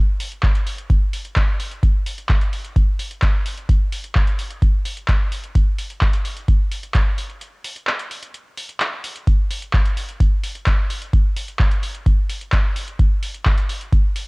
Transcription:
0.20 open hi-hat loud
0.32 closed hi-hat soft
0.43 kick loud
0.43 clap loud
0.55 closed hi-hat medium
0.67 open hi-hat medium
0.78 closed hi-hat soft
0.90 kick loud
0.90 closed hi-hat medium
1.13 open hi-hat loud
1.25 closed hi-hat soft
1.36 kick loud
1.36 clap loud
1.36 closed hi-hat medium
1.60 open hi-hat medium
1.71 closed hi-hat soft
1.83 kick loud
1.83 closed hi-hat medium
2.06 open hi-hat loud
2.18 closed hi-hat soft
2.29 kick loud
2.29 clap loud
2.41 closed hi-hat medium
2.53 open hi-hat medium
2.65 closed hi-hat soft
2.76 kick loud
2.76 closed hi-hat medium
2.99 open hi-hat loud
3.11 closed hi-hat soft
3.22 kick loud
3.22 clap loud
3.22 closed hi-hat medium
3.46 open hi-hat medium
3.57 closed hi-hat soft
3.69 kick loud
3.69 closed hi-hat medium
3.92 open hi-hat loud
4.04 closed hi-hat soft
4.15 kick loud
4.15 clap loud
4.27 closed hi-hat medium
4.39 open hi-hat medium
4.50 closed hi-hat medium
4.62 kick loud
4.62 closed hi-hat medium
4.85 open hi-hat loud
4.97 closed hi-hat medium
5.08 kick loud
5.08 clap loud
5.08 closed hi-hat medium
5.32 open hi-hat medium
5.44 closed hi-hat medium
5.55 kick loud
5.55 closed hi-hat medium
5.78 open hi-hat loud
5.90 closed hi-hat medium
6.01 kick loud
6.01 clap loud
6.13 closed hi-hat medium
6.25 open hi-hat medium
6.37 closed hi-hat medium
6.48 kick loud
6.48 closed hi-hat medium
6.71 open hi-hat loud
6.83 closed hi-hat medium
6.94 kick loud
6.94 clap loud
6.94 closed hi-hat medium
7.18 open hi-hat medium
7.30 closed hi-hat medium
7.41 closed hi-hat medium
7.64 open hi-hat medium
7.76 closed hi-hat soft
7.87 clap loud
7.99 closed hi-hat medium
8.11 open hi-hat medium
8.23 closed hi-hat medium
8.34 closed hi-hat medium
8.57 open hi-hat loud
8.69 closed hi-hat medium
8.80 clap loud
8.80 closed hi-hat medium
9.04 open hi-hat medium
9.16 closed hi-hat medium
9.27 kick loud
9.27 closed hi-hat medium
9.51 open hi-hat loud
9.62 closed hi-hat medium
9.73 kick loud
9.73 clap loud
9.85 closed hi-hat medium
9.97 open hi-hat medium
10.09 closed hi-hat medium
10.20 kick loud
10.20 closed hi-hat medium
10.44 open hi-hat loud
10.55 closed hi-hat medium
10.66 kick loud
10.66 clap loud
10.66 closed hi-hat medium
10.90 open hi-hat medium
11.02 closed hi-hat medium
11.13 kick loud
11.13 closed hi-hat medium
11.37 open hi-hat loud
11.48 closed hi-hat soft
11.59 kick loud
11.59 clap loud
11.71 closed hi-hat medium
11.83 open hi-hat medium
11.95 closed hi-hat medium
12.06 kick loud
12.06 closed hi-hat medium
12.30 open hi-hat loud
12.41 closed hi-hat medium
12.52 kick loud
12.52 clap loud
12.52 closed hi-hat medium
12.76 open hi-hat loud
12.88 closed hi-hat soft
12.99 kick loud
12.99 closed hi-hat medium
13.23 open hi-hat loud
13.34 closed hi-hat medium
13.45 kick loud
13.45 clap loud
13.58 closed hi-hat medium
13.69 open hi-hat loud
13.81 closed hi-hat medium
13.92 kick loud
13.92 closed hi-hat medium
14.16 open hi-hat loud

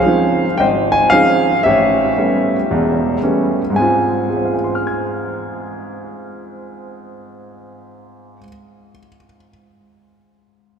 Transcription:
0.00 0.56 F4 medium
0.00 0.93 G#4 medium
0.00 0.59 C5 medium
0.00 0.61 F5 medium
0.06 0.45 F3 soft
0.06 0.45 C4 soft
0.06 0.45 C#4 soft
0.06 0.45 D#4 medium
0.58 1.06 G#1 medium
0.58 1.11 C5 medium
0.58 1.61 D#5 medium
0.58 0.66 G5 medium
0.92 1.09 G#5 medium
1.10 1.50 F3 soft
1.10 1.50 C4 soft
1.10 1.50 C#4 soft
1.10 1.50 D#4 medium
1.10 1.61 G#4 medium
1.10 1.61 C5 medium
1.10 1.60 F5 loud
1.63 2.11 A1 medium
1.63 3.19 G4 medium
1.63 3.19 C#5 medium
1.63 3.18 E5 medium
2.18 2.55 G3 soft
2.18 2.55 A3 soft
2.18 2.56 B3 soft
2.18 2.56 C#4 soft
2.71 3.16 E1 medium
2.71 3.16 E2 medium
3.23 3.61 G3 soft
3.23 3.61 A3 soft
3.23 3.61 B3 soft
3.23 3.61 C#4 medium
3.70 8.36 G#2 medium
3.70 8.40 G#3 medium
3.76 8.44 C4 soft
3.76 4.53 G#5 medium
3.82 8.48 F4 medium
4.29 8.91 G#4 soft
4.37 8.98 C5 soft
4.45 9.07 F5 soft
4.54 9.16 G#5 soft
4.64 9.26 C6 soft
4.75 9.37 F6 soft
4.87 9.49 G#6 soft

